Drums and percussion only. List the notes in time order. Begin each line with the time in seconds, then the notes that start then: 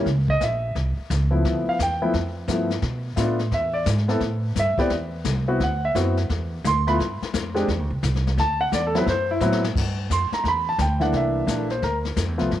0.06 brush sweep, kick, snare
0.28 kick
0.41 kick, snare, hi-hat pedal
0.75 brush sweep, kick, snare
1.10 kick, snare, hi-hat pedal
1.45 brush sweep, kick, snare
1.79 kick, snare, hi-hat pedal
2.14 brush sweep, kick, snare
2.48 kick, snare, hi-hat pedal
2.70 snare
2.82 brush sweep, kick, snare
3.17 kick, snare, hi-hat pedal
3.39 snare
3.51 brush sweep, kick, snare
3.86 kick, snare, hi-hat pedal
3.98 snare
4.09 snare
4.20 brush sweep, kick, snare
4.55 kick, snare, hi-hat pedal
4.78 kick, snare
4.90 brush sweep, kick, snare
5.25 kick, snare, hi-hat pedal
5.60 brush sweep, kick, snare
5.95 kick, snare, hi-hat pedal
6.17 snare
6.30 brush sweep, kick, snare
6.64 kick, snare, hi-hat pedal
6.87 snare
6.99 brush sweep, kick, snare
7.22 snare
7.34 kick, snare, hi-hat pedal
7.56 snare
7.68 brush sweep, kick, snare
8.03 kick, snare, hi-hat pedal
8.15 snare
8.27 snare
8.37 brush sweep, kick, snare
8.72 kick, snare, hi-hat pedal
8.95 snare
9.06 brush sweep, kick, snare
9.41 snare, hi-hat pedal
9.52 snare
9.64 snare
9.75 brush sweep, kick, snare, crash
10.10 kick, snare, hi-hat pedal
10.32 snare
10.44 brush sweep, kick, snare
10.78 kick, snare, hi-hat pedal
11.01 snare
11.13 brush sweep, kick, snare
11.47 kick, snare, hi-hat pedal
11.70 snare
11.82 brush sweep, kick, snare
12.05 snare
12.16 kick, snare, hi-hat pedal
12.39 snare
12.51 brush sweep, kick, snare